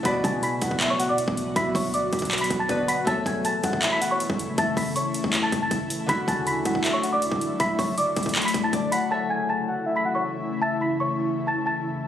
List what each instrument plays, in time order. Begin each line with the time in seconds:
Already playing: harp A3
0.03 808-style bass B1, harp B2 B3 F#4, ambient pad D3 F#3 B3 F#4, celesta B5 B6, kick, closed hi-hat
0.08 harp D5
0.24 808-style bass B2, soft synth lead G#5, celesta A5 A6, kick, closed hi-hat
0.43 celesta B5 B6, closed hi-hat
0.62 808-style bass B1, soft synth lead F#5, kick, closed hi-hat
0.71 kick
0.80 soft synth lead E5, clap, closed hi-hat
0.90 celesta C#5 C#6
1.00 soft synth lead F#5, closed hi-hat
1.09 808-style bass B2, celesta D5 D6
1.18 closed hi-hat
1.28 808-style bass B1, kick
1.37 closed hi-hat
1.56 808-style bass B1, soft synth lead E5, celesta B5 B6, kick, closed hi-hat
1.75 808-style bass D2, celesta C#5 C#6, kick, open hi-hat
1.94 celesta D5 D6, closed hi-hat
2.13 808-style bass B1, kick, closed hi-hat
2.19 kick, closed hi-hat
2.25 closed hi-hat
2.31 clap, closed hi-hat
2.38 celesta B5, closed hi-hat
2.42 celesta B6, closed hi-hat
2.50 808-style bass B1, kick, closed hi-hat
2.59 celesta A5 A6
2.68 808-style bass B1, harp B2 B3 F#4 B4, soft synth lead D5, kick, closed hi-hat
2.88 soft synth lead F#5, celesta B5 B6, closed hi-hat
3.05 808-style bass A1, ambient pad C#3 E3 A3 E4, harp A3 A4 C#5, celesta A5 A6, kick, closed hi-hat
3.10 harp E5
3.26 808-style bass A1, soft synth lead G#5, celesta G#5 G#6, kick, closed hi-hat
3.45 celesta A5 A6, closed hi-hat
3.64 808-style bass A1, soft synth lead F#5, kick, closed hi-hat
3.73 kick
3.82 soft synth lead E5, clap, closed hi-hat
3.92 celesta B5 B6
4.01 soft synth lead F#5, closed hi-hat
4.11 celesta C#5 C#6
4.20 closed hi-hat
4.30 808-style bass A1, kick
4.39 closed hi-hat
4.58 808-style bass A1, soft synth lead E5, celesta A5 A6, kick, closed hi-hat
4.77 808-style bass A1, celesta B5 B6, kick, open hi-hat
4.96 celesta C#5 C#6, closed hi-hat
5.14 closed hi-hat
5.24 808-style bass A1, kick
5.33 clap, closed hi-hat
5.43 celesta A5 A6
5.52 808-style bass A1, kick, closed hi-hat
5.62 celesta A5 A6
5.71 808-style bass A1, kick, closed hi-hat
5.90 closed hi-hat
6.06 808-style bass D1, harp D3 D4 E4, ambient pad D3 F#3 A3, celesta B5 B6, kick, closed hi-hat
6.11 harp F#4
6.28 808-style bass D2, soft synth lead G#5, celesta A5 A6, kick, closed hi-hat
6.47 celesta B5 B6, closed hi-hat
6.65 808-style bass D1, soft synth lead F#5, kick, closed hi-hat
6.75 kick
6.84 soft synth lead E5, clap, closed hi-hat
6.93 celesta C#5 C#6
7.03 soft synth lead F#5, closed hi-hat
7.13 808-style bass D2, celesta D5 D6
7.22 closed hi-hat
7.32 808-style bass D1, kick
7.41 closed hi-hat
7.60 808-style bass D1, soft synth lead E5, celesta B5 B6, kick, closed hi-hat
7.79 808-style bass F#1, celesta C#5 C#6, kick, open hi-hat
7.98 celesta D5 D6, closed hi-hat
8.16 808-style bass D1, kick, closed hi-hat
8.23 kick, closed hi-hat
8.29 closed hi-hat
8.35 clap, closed hi-hat
8.42 celesta B5, closed hi-hat
8.46 celesta B6, closed hi-hat
8.54 808-style bass D1, kick, closed hi-hat
8.64 celesta A5 A6
8.73 808-style bass D1, soft synth lead D5, harp D5, kick, closed hi-hat
8.92 harp F#5, soft synth lead F#5, celesta B5 B6, closed hi-hat
9.09 ambient pad C#3 E3 A3 E4, harp A3 A4 C#5, celesta A5 A6
9.14 harp E5
9.30 soft synth lead G#5, celesta G#5 G#6
9.49 celesta A5 A6
9.67 soft synth lead F#5
9.86 soft synth lead E5
9.96 celesta B5 B6
10.05 soft synth lead F#5
10.15 celesta C#5 C#6
10.62 soft synth lead E5, celesta A5 A6
10.81 celesta B5 B6
11.00 celesta C#5 C#6
11.47 celesta A5 A6
11.66 celesta A5 A6